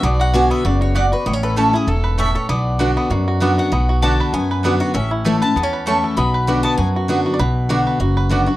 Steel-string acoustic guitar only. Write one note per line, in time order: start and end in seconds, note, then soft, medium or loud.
0.03 0.62 B2 loud
0.34 0.63 D3 medium
0.34 0.63 B3 loud
0.34 0.64 D4 medium
0.34 0.64 F#4 loud
0.65 0.94 C#3 medium
0.95 1.25 B2 medium
1.26 1.85 A2 medium
1.57 1.73 E3 medium
1.57 1.73 A3 medium
1.57 1.73 C#4 loud
1.57 1.72 E4 medium
1.73 1.88 C#4 soft
1.73 1.87 E4 medium
1.88 2.17 G#2 medium
2.18 2.48 A2 medium
2.49 3.08 B2 medium
2.79 3.09 D3 medium
2.79 3.09 B3 medium
2.79 3.09 D4 loud
2.79 3.10 F#4 medium
3.10 3.69 F#2 medium
3.40 3.70 D3 medium
3.40 3.71 B3 medium
3.40 3.71 D4 loud
3.40 3.71 F#4 medium
3.72 4.30 B2 medium
4.02 4.32 D3 medium
4.02 4.32 B3 medium
4.02 4.32 D4 loud
4.02 4.32 F#4 loud
4.34 4.92 F#2 loud
4.64 4.93 D3 medium
4.64 4.94 B3 medium
4.64 4.94 D4 loud
4.64 4.94 F#4 medium
4.95 5.53 A2 loud
5.25 5.41 E3 medium
5.25 5.41 A3 loud
5.25 5.42 C#4 loud
5.25 5.41 E4 medium
5.42 5.56 C#4 medium
5.42 5.55 E4 medium
5.87 6.16 E3 medium
5.87 6.16 A3 medium
5.87 6.16 C#4 medium
5.87 6.17 E4 medium
6.17 6.75 B2 loud
6.47 6.77 D3 medium
6.47 6.77 B3 medium
6.47 6.77 D4 medium
6.47 6.77 F#4 medium
6.77 7.36 F#2 medium
7.08 7.38 D3 medium
7.08 7.38 B3 medium
7.08 7.38 D4 loud
7.08 7.39 F#4 loud
7.39 7.98 B2 medium
7.69 7.99 D3 medium
7.69 7.99 B3 medium
7.69 7.99 D4 medium
7.69 8.00 F#4 loud
8.00 8.57 F#2 medium
8.29 8.46 D3 medium
8.29 8.47 B3 medium
8.29 8.47 D4 medium
8.29 8.45 F#4 loud
8.46 8.57 D4 soft
8.46 8.57 F#4 medium